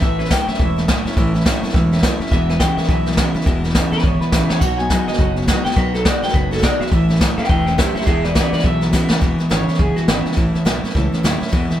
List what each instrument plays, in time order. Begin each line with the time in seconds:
0.02 fretless electric bass A1, steel-string acoustic guitar A2 E3 A3 C#4 E4, clean electric guitar E5, kick, snare
0.18 steel-string acoustic guitar A3 C#4 E4, clean electric guitar B4, snare
0.25 snare
0.30 steel-string acoustic guitar A2 E3 A3 C#4 E4, clean electric guitar F#3 G5, kick, snare, hi-hat pedal
0.47 steel-string acoustic guitar A3 C#4 E4, clean electric guitar E5, muted fretless electric bass stroke, snare
0.54 snare
0.59 fretless electric bass E1, clean electric guitar A2, steel-string acoustic guitar E3 A3 C#4 E4, kick, snare
0.76 steel-string acoustic guitar A3 C#4 E4, snare
0.88 steel-string acoustic guitar A2 E3 A3 C#4 E4, clean electric guitar F#3, kick, snare, hi-hat pedal
1.05 steel-string acoustic guitar A3 C#4 E4, muted fretless electric bass stroke, snare
1.12 snare
1.17 fretless electric bass A1, steel-string acoustic guitar A2 E3 A3 C#4 E4, kick, snare
1.34 steel-string acoustic guitar A3 C#4 E4, snare
1.40 snare
1.45 steel-string acoustic guitar A2 E3 A3 C#4 E4, clean electric guitar F#3, kick, snare, hi-hat pedal
1.63 steel-string acoustic guitar A3 C#4 E4, muted fretless electric bass stroke, snare
1.69 snare
1.74 fretless electric bass E1, clean electric guitar A2, steel-string acoustic guitar E3 A3 C#4 E4, kick, snare
1.91 steel-string acoustic guitar A3 C#4 E4, snare
1.98 snare
2.03 steel-string acoustic guitar A2 E3 A3 C#4 E4, clean electric guitar F#3, kick, snare, hi-hat pedal
2.20 steel-string acoustic guitar A3 C#4 E4, muted fretless electric bass stroke, snare
2.27 snare
2.31 fretless electric bass E1, steel-string acoustic guitar E2 B2 E3 G#3 B3 E4, clean electric guitar E5, kick, snare
2.49 steel-string acoustic guitar E3 G#3 B3 E4, clean electric guitar B4, snare
2.60 steel-string acoustic guitar E2 B2 E3 G#3 B3 E4, clean electric guitar C#3 G5, kick, snare, hi-hat pedal
2.77 steel-string acoustic guitar E3 G#3 B3 E4, clean electric guitar E5, muted fretless electric bass stroke, snare
2.83 snare
2.89 fretless electric bass B1, clean electric guitar E2 B2, steel-string acoustic guitar E3 G#3 B3 E4, kick, snare
3.06 steel-string acoustic guitar E3 G#3 B3 E4, snare
3.12 snare
3.17 steel-string acoustic guitar E2 B2 E3 G#3 B3 E4, clean electric guitar C#3, kick, snare, hi-hat pedal
3.34 steel-string acoustic guitar E3 G#3 B3 E4, muted fretless electric bass stroke, snare
3.41 snare
3.46 fretless electric bass E1, steel-string acoustic guitar E2 B2 E3 G#3 B3 E4, kick, snare
3.64 steel-string acoustic guitar E3 G#3 B3 E4, snare
3.69 snare
3.75 steel-string acoustic guitar E2 B2 E3 G#3 B3 E4, clean electric guitar C#3, kick, snare, hi-hat pedal
3.92 steel-string acoustic guitar E3 G#3 B3 E4, clean electric guitar B4, muted fretless electric bass stroke, snare
3.98 snare
4.03 fretless electric bass G#1, clean electric guitar E2 B2 C#5, steel-string acoustic guitar E3 G#3 B3 E4, kick, snare
4.21 steel-string acoustic guitar E3 G#3 B3 E4, clean electric guitar B4, muted fretless electric bass stroke, snare
4.32 fretless electric bass A1, steel-string acoustic guitar E2 B2 E3 G#3 B3 E4, clean electric guitar C#3, kick, snare, hi-hat pedal
4.49 steel-string acoustic guitar E3 G#3 B3 E4, clean electric guitar C#5, muted fretless electric bass stroke, snare
4.60 fretless electric bass B1, steel-string acoustic guitar B2 F#3 B3 D#4 F#4, clean electric guitar F#5, kick, snare, splash
4.78 steel-string acoustic guitar B3 D#4 F#4, clean electric guitar G#5, snare
4.90 steel-string acoustic guitar B2 F#3 B3 D#4 F#4, clean electric guitar G#3, kick, snare, hi-hat pedal
5.07 steel-string acoustic guitar B3 D#4 F#4, clean electric guitar D#5, muted fretless electric bass stroke, snare
5.13 snare
5.18 fretless electric bass F#1, clean electric guitar B2, steel-string acoustic guitar F#3 B3 D#4 F#4, kick, snare
5.36 steel-string acoustic guitar B3 D#4 F#4, snare
5.42 snare
5.47 steel-string acoustic guitar B2 F#3 B3 D#4 F#4, clean electric guitar G#3, kick, snare, hi-hat pedal
5.65 steel-string acoustic guitar B3 D#4 F#4, clean electric guitar G5, muted fretless electric bass stroke, snare
5.71 snare
5.76 fretless electric bass B1, steel-string acoustic guitar B2 F#3 B3 D#4 F#4, clean electric guitar B4, kick, snare
5.94 steel-string acoustic guitar B3 D#4 F#4, clean electric guitar A4, snare
6.05 steel-string acoustic guitar B2 F#3 B3 D#4 F#4, clean electric guitar G#3 D5, kick, snare, hi-hat pedal
6.23 steel-string acoustic guitar B3 D#4 F#4, clean electric guitar G5, muted fretless electric bass stroke, snare
6.28 snare
6.34 fretless electric bass F#1, clean electric guitar B2 B4, steel-string acoustic guitar F#3 B3 D#4 F#4, kick, snare
6.51 steel-string acoustic guitar B3 D#4 F#4, clean electric guitar A4, snare
6.57 snare
6.62 steel-string acoustic guitar B2 F#3 B3 D#4 F#4, clean electric guitar G#3 D5, kick, snare, hi-hat pedal
6.80 steel-string acoustic guitar B3 D#4 F#4, clean electric guitar E5, muted fretless electric bass stroke, snare
6.87 snare
6.92 fretless electric bass A1, steel-string acoustic guitar A2 E3 A3 C#4 E4, kick, snare
7.09 steel-string acoustic guitar A3 C#4 E4, snare
7.15 snare
7.21 steel-string acoustic guitar A2 E3 A3 C#4 E4, clean electric guitar F#3, kick, snare, hi-hat pedal
7.38 steel-string acoustic guitar A3 C#4 E4, clean electric guitar B4 G5, muted fretless electric bass stroke, snare
7.44 snare
7.49 fretless electric bass E1, clean electric guitar A2 B4 G5, steel-string acoustic guitar E3 A3 C#4 E4, kick, snare
7.66 steel-string acoustic guitar A3 C#4 E4, clean electric guitar B4 G5, snare
7.78 steel-string acoustic guitar A2 E3 A3 C#4 E4, clean electric guitar F#3 G4 E5, kick, snare, hi-hat pedal
7.95 steel-string acoustic guitar A3 C#4 E4, clean electric guitar G4 E5, muted fretless electric bass stroke, snare
8.01 snare
8.06 fretless electric bass E1, steel-string acoustic guitar E2 B2 E3 G#3 B3 E4, clean electric guitar G#4 E5, kick, snare
8.23 steel-string acoustic guitar E3 G#3 B3 E4, clean electric guitar B4 D5, snare
8.35 steel-string acoustic guitar E2 B2 E3 G#3 B3 E4, clean electric guitar C#3 B4 D5, kick, snare, hi-hat pedal
8.53 steel-string acoustic guitar E3 G#3 B3 E4, clean electric guitar B4 D5, muted fretless electric bass stroke, snare
8.59 snare
8.64 fretless electric bass B1, clean electric guitar E2 B2 E5, steel-string acoustic guitar E3 G#3 B3 E4, kick, snare
8.81 steel-string acoustic guitar E3 G#3 B3 E4, snare
8.93 steel-string acoustic guitar E2 B2 E3 G#3 B3 E4, clean electric guitar C#3, kick, snare, hi-hat pedal
9.10 steel-string acoustic guitar E3 G#3 B3 E4, muted fretless electric bass stroke, snare
9.21 fretless electric bass E1, steel-string acoustic guitar E2 B2 E3 G#3 B3 E4, kick, snare
9.39 steel-string acoustic guitar E3 G#3 B3 E4, muted fretless electric bass stroke, snare
9.50 fretless electric bass G#1, steel-string acoustic guitar E2 B2 E3 G#3 B3 E4, clean electric guitar C#3 C#5, snare, hi-hat pedal
9.68 steel-string acoustic guitar E3 G#3 B3 E4, snare
9.74 snare
9.79 fretless electric bass F#1, clean electric guitar E2 B2 G#4, steel-string acoustic guitar E3 G#3 B3 E4, kick, snare
9.96 steel-string acoustic guitar E3 G#3 B3 E4, clean electric guitar F#4, muted fretless electric bass stroke, snare
10.07 fretless electric bass G#1, steel-string acoustic guitar E2 B2 E3 G#3 B3 E4, clean electric guitar C#3 E4, snare, hi-hat pedal
10.26 steel-string acoustic guitar E3 G#3 B3 E4, muted fretless electric bass stroke, snare
10.32 snare
10.37 fretless electric bass A1, steel-string acoustic guitar A2 E3 A3 C#4 E4, kick, snare
10.54 steel-string acoustic guitar A3 C#4 E4, muted fretless electric bass stroke, snare
10.65 fretless electric bass B1, steel-string acoustic guitar A2 E3 A3 C#4 E4, clean electric guitar F#3, snare, hi-hat pedal
10.83 steel-string acoustic guitar A3 C#4 E4, muted fretless electric bass stroke, snare
10.90 snare
10.94 fretless electric bass C#2, clean electric guitar A2, steel-string acoustic guitar E3 A3 C#4 E4, kick, snare
11.12 steel-string acoustic guitar A3 C#4 E4, muted fretless electric bass stroke, snare
11.23 fretless electric bass D#2, steel-string acoustic guitar A2 E3 A3 C#4 E4, clean electric guitar F#3, snare, hi-hat pedal
11.40 steel-string acoustic guitar A3 C#4 E4, muted fretless electric bass stroke, snare
11.47 snare
11.52 steel-string acoustic guitar E2 B2 E3 G#3 B3 E4, fretless electric bass E2, kick, snare
11.70 steel-string acoustic guitar E3 G#3 B3 E4, muted fretless electric bass stroke, snare